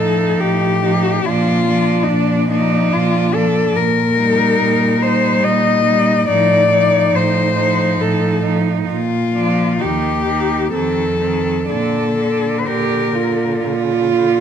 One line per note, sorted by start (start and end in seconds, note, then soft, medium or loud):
0.00 0.30 A2 soft
0.00 0.82 F3 soft
0.00 0.81 D#4 soft
0.00 0.41 A4 medium
0.40 1.15 A2 soft
0.40 1.27 G4 medium
0.83 1.24 F3 soft
0.83 1.25 D#4 soft
1.25 2.00 A#2 medium
1.25 1.67 F3 soft
1.25 1.67 D4 soft
1.25 2.05 F4 medium
1.67 2.50 F3 soft
1.67 2.50 D4 soft
2.03 2.11 D#4 soft
2.10 2.83 A#2 medium
2.10 2.51 D4 medium
2.51 3.32 F3 soft
2.51 3.32 D4 medium
2.51 2.94 D#4 medium
2.93 3.65 A#2 medium
2.93 3.35 F4 medium
3.33 3.74 F3 soft
3.33 3.74 D4 soft
3.33 3.78 A4 medium
3.75 4.49 A#2 medium
3.75 5.04 A#4 medium
4.17 5.00 G3 soft
4.17 4.99 D#4 soft
4.59 5.33 A#2 medium
5.02 5.84 G3 soft
5.02 5.84 D#4 soft
5.02 5.45 C5 medium
5.43 6.18 A#2 medium
5.43 6.28 D#5 medium
5.84 6.27 G3 soft
5.84 6.26 D#4 soft
6.28 7.04 A2 medium
6.28 6.70 F3 soft
6.28 6.70 D#4 soft
6.28 7.16 D5 medium
6.70 7.56 F3 soft
6.70 7.55 D#4 soft
7.14 7.90 A2 medium
7.14 8.03 C5 medium
7.56 8.42 F3 soft
7.56 8.41 D#4 soft
8.01 8.78 A2 medium
8.01 8.44 A4 medium
8.42 8.87 F3 soft
8.42 8.87 D#4 soft
8.89 9.71 A#2 medium
8.89 9.82 F4 medium
9.34 9.80 F3 soft
9.34 9.78 D4 soft
9.79 10.63 D#2 soft
9.79 10.27 D#3 soft
9.79 10.25 D#4 soft
9.79 10.73 G4 medium
10.26 10.72 D#3 soft
10.26 10.72 D#4 soft
10.72 11.58 F2 soft
10.72 11.20 D#3 soft
10.72 11.18 C4 soft
10.72 11.68 A4 medium
11.19 11.68 D#3 soft
11.19 11.67 C4 soft
11.68 12.56 A#2 soft
11.68 12.17 D3 soft
11.68 12.17 D4 soft
11.68 12.61 A4 medium
12.18 13.14 D3 soft
12.18 12.57 D4 soft
12.59 12.68 C5 soft
12.67 13.53 A#2 soft
12.67 13.16 G4 medium
12.67 13.63 A#4 soft
13.15 14.11 D3 soft
13.15 13.61 F4 soft
13.62 14.40 A#2 soft
13.62 14.40 F4 medium
14.12 14.40 D3 soft